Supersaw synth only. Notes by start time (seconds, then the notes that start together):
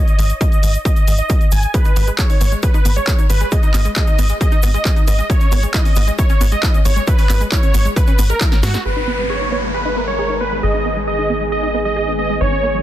Already playing: D#5
0.41 D#5
0.85 D#5
1.18 D#5
1.52 G#5
1.74 B4
2.19 C#5
2.63 B4
2.96 C#5
3.30 B4
3.52 D#5
3.96 D#5
4.41 D#5
4.74 D#5
5.08 D#5
5.30 C#5
5.74 D#5
6.19 C#5
6.52 D#5
6.85 C#5
7.08 B4
7.52 C#5
7.96 B4
8.30 A#4
8.63 F#4
8.85 B4
9.30 C#5
9.74 B4
10.08 C#5
10.41 B4
10.63 D#5
11.07 D#5
11.52 D#5
11.85 D#5
12.19 D#5
12.41 C#5